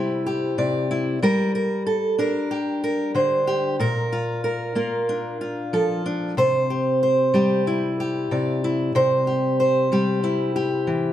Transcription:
0.00 0.57 C3 medium
0.00 1.21 G3 medium
0.00 0.90 E4 medium
0.00 0.25 G4 soft
0.00 0.58 C5 medium
0.26 1.18 G4 medium
0.58 1.18 C3 medium
0.58 1.18 D5 medium
0.91 1.19 E4 medium
1.22 3.79 G3 medium
1.22 1.55 A#4 medium
1.55 1.86 A#4 medium
1.87 2.18 A4 medium
2.18 3.75 D4 medium
2.18 2.82 A#4 medium
2.51 3.46 G4 medium
2.84 3.15 A#4 medium
3.15 3.79 D3 medium
3.15 3.76 C5 medium
3.47 3.75 G4 medium
3.79 6.34 A#2 medium
3.79 4.43 A#4 medium
4.12 4.75 F4 medium
4.44 5.73 A#4 medium
4.75 6.34 A#3 medium
4.75 5.40 F4 soft
5.09 6.05 D4 medium
5.41 6.34 F4 medium
5.73 6.34 F3 medium
5.73 6.38 A4 medium
6.06 6.34 D4 medium
6.37 8.30 C3 medium
6.37 7.02 C5 medium
6.70 7.34 G4 soft
7.03 8.31 C5 medium
7.34 9.91 G3 medium
7.34 8.00 G4 medium
7.67 8.63 E4 medium
8.00 9.27 G4 medium
8.31 8.91 C3 medium
8.31 8.92 D5 medium
8.64 8.92 E4 medium
8.95 11.13 C3 medium
8.95 9.59 C5 medium
9.27 9.92 G4 medium
9.60 11.13 C5 medium
9.92 11.13 G3 medium
9.92 10.55 G4 medium
10.24 11.13 E4 medium
10.56 11.13 G4 medium
10.87 11.13 E3 medium

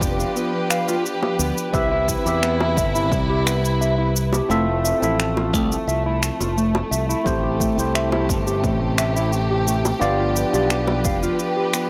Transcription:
0.00 0.24 F1 loud
0.00 1.71 F3 medium
0.00 1.75 B3 medium
0.00 1.76 D4 medium
0.00 1.75 F4 medium
0.00 1.70 G4 medium
0.00 1.74 G4 medium
0.00 4.45 B4 medium
0.00 1.75 D5 loud
0.00 kick loud
0.00 shaker medium
0.20 0.34 G4 medium
0.20 shaker soft
0.36 0.52 B3 medium
0.36 shaker soft
0.70 0.86 F5 medium
0.70 finger snap medium
0.70 shaker medium
0.88 1.03 F4 loud
0.88 high bongo medium
0.88 shaker soft
1.06 shaker soft
1.22 1.37 G4 medium
1.22 high bongo loud
1.39 1.50 D2 medium
1.39 1.55 B3 medium
1.39 shaker medium
1.58 shaker soft
1.73 2.15 C2 medium
1.73 4.47 C3 medium
1.73 2.21 C4 medium
1.73 2.22 E4 medium
1.73 4.47 E4 medium
1.73 2.22 G4 medium
1.73 2.22 B4 medium
1.73 1.90 E5 medium
1.73 2.22 E5 loud
1.73 kick loud
1.73 shaker soft
1.92 2.07 E4 loud
2.08 kick medium
2.08 shaker medium
2.26 2.79 E2 loud
2.26 4.45 E4 medium
2.26 2.41 G4 medium
2.26 4.46 G4 medium
2.26 4.46 B4 medium
2.26 4.47 E5 medium
2.26 shaker soft
2.43 2.59 B3 medium
2.43 finger snap medium
2.43 shaker soft
2.60 high bongo loud
2.77 3.12 G1 loud
2.77 2.93 E5 medium
2.77 kick loud
2.77 shaker medium
2.95 3.10 E4 loud
2.95 shaker soft
3.12 4.40 C2 medium
3.12 kick loud
3.12 shaker soft
3.30 3.45 G4 medium
3.46 3.62 B3 medium
3.46 finger snap medium
3.46 shaker medium
3.65 shaker soft
3.81 3.97 E5 medium
3.81 shaker soft
3.98 4.13 E4 loud
4.16 shaker medium
4.33 4.48 G4 medium
4.33 high bongo loud
4.33 shaker soft
4.49 4.91 F1 loud
4.49 4.66 A3 medium
4.49 9.98 A3 medium
4.49 4.97 C4 medium
4.49 4.98 E4 medium
4.49 4.98 F4 medium
4.49 4.98 A4 medium
4.49 4.98 E5 loud
4.49 shaker soft
4.84 5.00 E5 medium
4.84 shaker medium
5.00 5.53 A1 medium
5.00 7.21 F3 medium
5.00 7.20 C4 medium
5.00 5.17 E4 loud
5.00 7.22 A4 medium
5.00 shaker soft
5.04 7.22 E5 medium
5.20 finger snap medium
5.20 shaker soft
5.37 5.52 F4 medium
5.37 high bongo medium
5.53 5.75 C2 loud
5.53 5.69 A3 medium
5.53 kick loud
5.53 shaker medium
5.72 shaker soft
5.87 6.29 C2 medium
5.87 6.04 E5 medium
5.87 shaker soft
6.06 6.21 E4 loud
6.23 finger snap medium
6.23 shaker medium
6.40 6.81 F1 medium
6.40 6.55 F4 medium
6.40 high bongo medium
6.40 shaker soft
6.57 6.73 A3 medium
6.57 shaker soft
6.75 high bongo medium
6.91 7.13 C2 medium
6.91 7.07 E5 medium
6.91 shaker medium
7.09 7.24 E4 loud
7.09 shaker soft
7.24 7.67 A1 medium
7.24 9.99 C3 medium
7.24 7.73 A3 medium
7.24 7.73 C4 medium
7.24 7.73 E4 medium
7.24 11.90 G4 medium
7.24 7.74 G4 medium
7.24 7.74 C5 loud
7.24 kick loud
7.24 shaker soft
7.44 7.59 G4 medium
7.60 7.76 A3 medium
7.60 kick medium
7.60 shaker medium
7.75 8.31 C2 medium
7.75 9.96 A3 medium
7.75 9.97 C4 medium
7.75 9.97 E4 medium
7.75 9.98 G4 medium
7.75 shaker soft
7.80 9.98 C5 medium
7.95 8.11 E5 medium
7.95 finger snap medium
7.95 shaker soft
8.12 8.27 E4 loud
8.12 high bongo loud
8.29 8.64 G1 loud
8.29 kick loud
8.29 shaker medium
8.47 8.62 G4 medium
8.47 shaker soft
8.64 9.92 A1 medium
8.64 8.80 A3 medium
8.64 kick loud
8.64 shaker soft
8.98 9.14 E5 medium
8.98 finger snap medium
8.98 shaker medium
9.16 9.31 E4 loud
9.16 shaker soft
9.33 shaker soft
9.51 9.66 G4 medium
9.67 9.83 A3 medium
9.67 shaker medium
9.85 high bongo medium
9.85 shaker soft
9.99 10.43 G1 loud
9.99 11.90 F3 medium
9.99 10.48 B3 loud
9.99 10.49 D4 medium
9.99 10.49 F4 medium
9.99 10.49 G4 medium
9.99 11.90 B4 medium
9.99 10.49 D5 loud
9.99 10.17 F5 medium
9.99 shaker soft
10.20 10.34 F4 loud
10.36 shaker medium
10.51 11.06 B1 medium
10.51 11.90 B3 medium
10.51 11.90 D4 medium
10.51 11.90 F4 medium
10.51 10.69 G4 medium
10.51 11.90 G4 medium
10.51 shaker soft
10.55 11.90 D5 medium
10.70 10.87 B3 medium
10.70 finger snap medium
10.70 shaker soft
10.88 high bongo loud
11.05 11.27 F1 medium
11.05 11.21 F5 medium
11.05 kick loud
11.05 shaker medium
11.23 11.38 F4 loud
11.23 shaker soft
11.39 shaker soft
11.57 11.72 G4 medium
11.74 11.90 B3 medium
11.74 finger snap medium
11.74 shaker medium

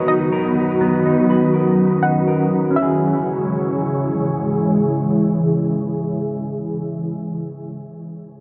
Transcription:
0.00 2.72 D#3 medium
0.00 2.72 F#3 medium
0.00 0.32 B3 medium
0.00 0.79 B3 medium
0.00 2.72 F#4 medium
0.00 0.31 A#4 medium
0.00 0.81 B4 medium
0.00 2.72 B4 medium
0.00 2.72 A#5 medium
0.00 2.72 D#6 medium
0.08 1.05 D#4 medium
0.08 0.31 D#5 medium
0.33 1.53 A#4 medium
0.81 2.27 B3 medium
0.81 2.74 C#4 medium
1.06 2.02 D#4 medium
1.30 2.76 B4 medium
1.54 2.26 A#4 medium
2.03 2.76 D#4 medium
2.03 2.72 F#5 medium
2.28 2.76 A#4 medium
2.70 6.62 C#4 medium
2.76 6.68 C#3 medium
2.76 6.68 E3 medium
2.76 6.68 G#3 medium
2.76 6.68 E4 medium
2.76 6.68 G#4 medium
2.76 6.68 C#5 medium
2.76 4.19 E5 medium
2.76 6.68 G#5 medium
2.76 6.68 E6 medium
2.82 6.74 G#4 medium

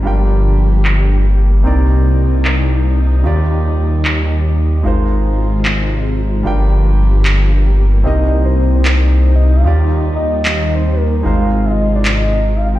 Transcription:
0.03 1.63 G1 medium
0.03 1.63 F3 medium
0.03 1.62 G3 medium
0.03 3.22 A#3 medium
0.03 1.62 D4 medium
0.03 1.63 F4 medium
0.03 1.64 G4 medium
0.03 1.63 A#4 medium
0.03 1.64 G5 medium
0.85 clap medium
1.63 3.23 C2 medium
1.63 3.22 C3 medium
1.63 3.23 C3 medium
1.63 3.22 C4 medium
1.63 4.82 D#4 medium
1.63 3.22 D#4 medium
1.63 3.23 A#4 medium
1.67 3.24 D5 medium
2.45 clap medium
3.23 4.83 D#2 medium
3.23 4.82 D#3 medium
3.23 4.84 G3 medium
3.23 4.82 D#4 medium
3.23 4.83 F4 medium
3.23 4.83 G4 medium
3.27 4.84 D5 medium
4.05 clap medium
4.83 6.43 G#1 medium
4.83 6.44 C3 medium
4.83 6.42 G#3 medium
4.83 6.44 G#3 medium
4.83 6.42 D#4 medium
4.83 6.43 F4 medium
4.83 6.44 F4 medium
4.83 6.43 A#4 medium
4.87 6.44 C5 medium
5.65 clap medium
6.43 8.03 G1 medium
6.43 8.04 F3 medium
6.43 8.02 G3 medium
6.43 9.62 A#3 medium
6.43 8.02 D4 medium
6.43 8.03 F4 medium
6.43 8.04 G4 medium
6.43 8.03 A#4 medium
6.43 8.04 G5 medium
7.25 clap medium
8.03 9.63 C2 medium
8.03 9.62 C3 medium
8.03 9.63 C3 medium
8.03 9.62 C4 medium
8.03 11.22 D#4 medium
8.03 9.63 D#4 medium
8.03 9.63 A#4 medium
8.03 8.41 D#5 medium
8.07 9.64 D#5 medium
8.45 8.72 C5 medium
8.75 8.93 C5 medium
8.85 clap medium
8.96 9.31 C5 medium
9.36 9.57 D#5 medium
9.56 9.82 F5 medium
9.63 11.23 D#2 medium
9.63 11.22 D#3 medium
9.63 11.24 G3 medium
9.63 11.22 D#4 medium
9.63 11.23 F4 medium
9.63 11.23 G4 medium
9.67 11.24 D5 medium
10.16 10.42 D#5 medium
10.45 10.72 D#5 medium
10.45 clap medium
10.76 10.97 C5 medium
10.95 11.22 A#4 medium
11.23 12.79 G#1 medium
11.23 12.79 C3 medium
11.23 12.79 G#3 medium
11.23 12.79 D#4 medium
11.23 12.79 F4 medium
11.23 12.79 A#4 medium
11.23 11.67 F5 medium
11.27 12.79 C5 medium
11.65 11.92 D#5 medium
11.95 12.13 D5 medium
12.05 clap medium
12.15 12.57 D#5 medium
12.55 12.73 F5 medium
12.75 12.79 G5 medium

